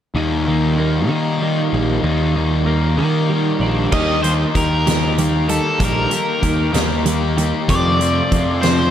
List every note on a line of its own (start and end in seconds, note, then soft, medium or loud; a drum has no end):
0.15 1.09 D#2 medium
0.15 0.76 D#3 medium
0.15 0.47 D#3 medium
0.15 0.47 G3 medium
0.15 0.47 A#3 medium
0.15 0.44 D#4 medium
0.45 1.09 D#3 medium
0.45 0.76 G3 soft
0.45 0.77 A#3 medium
0.45 0.78 D#4 medium
0.76 1.39 D#3 medium
0.76 1.10 G3 medium
0.76 1.10 A#3 medium
0.76 2.35 A#3 soft
0.76 1.07 D#4 medium
1.08 1.61 D#3 medium
1.08 2.02 D#3 medium
1.08 1.41 G3 soft
1.08 1.42 A#3 medium
1.08 1.43 D#4 medium
1.39 2.03 D#3 medium
1.39 1.74 G3 medium
1.39 2.98 G3 soft
1.39 1.73 A#3 medium
1.39 1.72 D#4 medium
1.72 1.98 A#1 medium
1.72 2.03 G3 soft
1.72 2.03 A#3 soft
1.72 2.05 D#4 medium
2.03 2.99 D#2 medium
2.03 2.63 D#3 medium
2.03 2.35 D#3 medium
2.03 2.36 G3 medium
2.03 2.35 A#3 medium
2.03 2.33 D#4 medium
2.35 2.97 D#3 medium
2.35 2.64 G3 medium
2.35 2.64 A#3 medium
2.35 2.65 D#4 medium
2.64 3.28 D#3 medium
2.64 2.98 G3 medium
2.64 2.98 A#3 medium
2.64 3.91 A#3 medium
2.64 2.95 D#4 medium
2.97 3.49 D#3 medium
2.97 3.90 D#3 medium
2.97 3.30 G3 soft
2.97 3.31 A#3 medium
2.97 3.31 D#4 medium
3.29 3.90 D#3 medium
3.29 3.91 G3 soft
3.29 3.62 G3 medium
3.29 3.61 A#3 medium
3.29 3.59 D#4 medium
3.60 3.86 A#1 medium
3.60 3.91 G3 soft
3.60 3.91 A#3 soft
3.60 3.92 D4 medium
3.60 3.90 D#4 soft
3.91 4.44 D#2 medium
3.91 4.21 D#3 medium
3.91 4.24 D#3 medium
3.91 4.21 G3 medium
3.91 4.21 A#3 medium
3.91 4.23 A#3 medium
3.91 4.23 D#4 medium
3.91 4.23 G4 medium
3.91 4.22 D#5 medium
3.91 kick loud
3.91 crash medium
4.23 4.52 D#3 medium
4.23 4.53 D#3 medium
4.23 4.52 G3 medium
4.23 4.54 A#3 medium
4.23 4.55 D#4 medium
4.23 4.55 G4 medium
4.23 4.32 C5 medium
4.23 closed hi-hat soft
4.55 5.58 D#2 medium
4.55 4.86 D#3 medium
4.55 4.83 D#3 medium
4.55 4.83 G3 medium
4.55 4.85 A#3 medium
4.55 4.85 D#4 medium
4.55 4.84 G4 medium
4.55 5.15 A#4 medium
4.55 kick medium
4.55 closed hi-hat medium
4.86 5.15 D#3 medium
4.86 5.17 D#3 medium
4.86 5.15 G3 medium
4.86 5.17 A#3 medium
4.86 5.17 D#4 medium
4.86 5.17 G4 medium
4.86 snare medium
4.86 closed hi-hat medium
5.18 5.49 D#3 medium
5.18 5.46 D#3 medium
5.18 5.46 G3 medium
5.18 5.49 A#3 medium
5.18 5.48 D#4 medium
5.18 5.48 G4 medium
5.18 closed hi-hat medium
5.48 5.77 D#3 medium
5.48 5.78 D#3 soft
5.48 5.77 G3 medium
5.48 5.79 A#3 medium
5.48 5.79 D#4 medium
5.48 5.79 G4 medium
5.48 5.82 A4 medium
5.48 closed hi-hat medium
5.79 6.06 A#1 medium
5.79 6.10 D#3 medium
5.79 6.10 G3 medium
5.79 6.11 A#3 medium
5.79 6.10 A#3 medium
5.79 6.10 D#4 medium
5.79 6.10 G4 medium
5.79 kick loud
5.79 closed hi-hat medium
5.84 7.04 A#4 medium
6.11 6.40 D#3 medium
6.11 6.42 D#3 medium
6.11 6.40 G3 medium
6.11 6.42 A#3 medium
6.11 6.42 D#4 medium
6.11 6.43 G4 medium
6.11 closed hi-hat medium
6.42 6.69 D#2 medium
6.42 6.71 D#3 medium
6.42 6.73 D#3 medium
6.42 6.71 G3 medium
6.42 6.72 A#3 medium
6.42 6.72 D#4 medium
6.42 6.71 G4 medium
6.42 kick medium
6.42 closed hi-hat medium
6.72 7.52 D#2 medium
6.72 7.05 D#3 medium
6.72 7.03 D#3 medium
6.72 7.03 G3 medium
6.72 7.05 A#3 medium
6.72 7.05 D#4 medium
6.72 7.05 G4 medium
6.72 snare loud
6.72 closed hi-hat medium
7.05 7.34 D#3 medium
7.05 7.37 D#3 medium
7.05 7.34 G3 medium
7.05 7.36 A#3 medium
7.05 7.36 D#4 medium
7.05 7.36 G4 medium
7.05 closed hi-hat medium
7.37 7.66 D#3 medium
7.37 7.68 D#3 medium
7.37 7.66 G3 medium
7.37 7.68 A#3 medium
7.37 7.69 D#4 medium
7.37 7.69 G4 medium
7.37 closed hi-hat medium
7.68 8.20 F2 medium
7.68 7.99 F2 medium
7.68 7.99 C3 medium
7.68 7.99 D#3 medium
7.68 8.00 F3 medium
7.68 8.00 A3 medium
7.68 8.00 C4 medium
7.68 7.99 F4 medium
7.68 8.61 D5 loud
7.68 kick loud
7.68 closed hi-hat medium
8.00 8.29 F2 medium
8.00 8.29 C3 medium
8.00 8.31 F3 medium
8.00 8.32 A3 medium
8.00 8.32 C4 medium
8.00 8.32 F4 medium
8.00 closed hi-hat medium
8.31 8.60 F2 medium
8.31 8.91 F2 medium
8.31 8.60 C3 medium
8.31 8.63 F3 medium
8.31 8.63 A3 medium
8.31 8.63 C4 medium
8.31 8.62 F4 medium
8.31 kick medium
8.31 closed hi-hat medium
8.62 8.91 F2 medium
8.62 8.91 C3 medium
8.62 8.91 F3 medium
8.62 8.91 A3 medium
8.62 8.91 C4 medium
8.62 8.91 F4 medium
8.62 8.91 C5 medium
8.62 snare loud
8.62 closed hi-hat medium